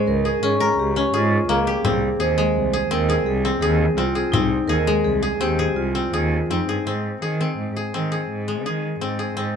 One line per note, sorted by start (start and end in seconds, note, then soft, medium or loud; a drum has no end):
0.00 1.90 G#3 medium
0.00 0.42 C#4 medium
0.00 0.25 G#4 medium
0.07 0.39 C#2 medium
0.07 0.44 A#4 medium
0.25 1.13 G#4 medium
0.43 0.75 G#2 medium
0.43 0.96 C#4 medium
0.43 0.71 G#4 medium
0.60 2.44 A#4 medium
0.60 frame drum soft
0.72 0.79 G#4 medium
0.78 1.10 C#2 medium
0.78 1.16 G4 medium
0.96 1.91 C#4 medium
0.96 frame drum soft
1.14 1.46 G#2 medium
1.14 1.51 F4 medium
1.14 1.73 G#4 medium
1.32 frame drum soft
1.49 1.81 C#2 medium
1.49 4.28 A#3 medium
1.49 1.83 G#4 medium
1.67 2.26 G4 medium
1.67 frame drum soft
1.84 2.16 C2 medium
1.84 2.90 C4 medium
1.84 2.22 G#4 medium
1.84 frame drum medium
2.20 2.36 D#2 medium
2.20 2.73 G#4 medium
2.20 2.88 C5 medium
2.20 frame drum soft
2.38 4.86 G#3 medium
2.56 2.88 C2 medium
2.73 3.09 G#4 medium
2.90 3.23 D#2 medium
2.90 3.44 C4 medium
2.90 3.28 A#4 medium
3.09 3.62 G#4 medium
3.09 frame drum soft
3.26 3.58 C2 medium
3.26 3.59 G#4 medium
3.44 3.97 C4 medium
3.44 frame drum soft
3.61 3.94 D#2 loud
3.61 3.98 G#4 medium
3.61 4.15 G#4 medium
3.80 frame drum soft
3.96 4.29 C2 medium
3.96 4.33 C4 medium
3.96 4.34 F4 medium
4.15 4.69 G#4 medium
4.32 4.65 C2 medium
4.32 5.40 C4 medium
4.32 4.69 D#4 medium
4.32 frame drum medium
4.68 4.85 D#2 medium
4.68 5.22 G#4 medium
4.68 5.05 A#4 medium
4.68 frame drum soft
4.87 6.92 G#3 medium
5.04 5.37 C2 medium
5.04 5.42 G#4 medium
5.23 5.58 G#4 medium
5.23 frame drum soft
5.40 5.73 D#2 medium
5.40 5.95 C4 medium
5.40 5.78 G4 medium
5.59 6.13 G#4 medium
5.59 frame drum soft
5.76 6.09 C2 medium
5.76 6.52 F4 medium
5.76 frame drum soft
5.95 6.50 C4 medium
5.95 frame drum soft
6.13 6.46 D#2 medium
6.13 6.68 G#4 medium
6.32 frame drum soft
6.50 6.67 F2 medium
6.50 6.86 C4 medium
6.50 6.84 D#4 medium
6.68 6.85 G2 medium
6.68 7.22 G#4 medium
6.86 7.19 G#2 medium
6.86 7.40 C4 medium
7.22 7.54 D#3 medium
7.22 7.76 G#4 medium
7.41 7.94 C4 medium
7.58 7.74 G#2 medium
7.76 8.11 G#4 medium
7.94 8.26 D#3 medium
7.94 9.01 C4 medium
8.12 8.66 G#4 medium
8.29 8.66 G#2 medium
8.48 9.56 G#3 medium
8.65 8.97 D#3 medium
8.65 9.19 G#4 medium
9.01 9.33 G#2 medium
9.01 9.36 C4 medium
9.19 9.56 G#4 medium
9.36 9.56 G#2 medium
9.36 9.56 C4 medium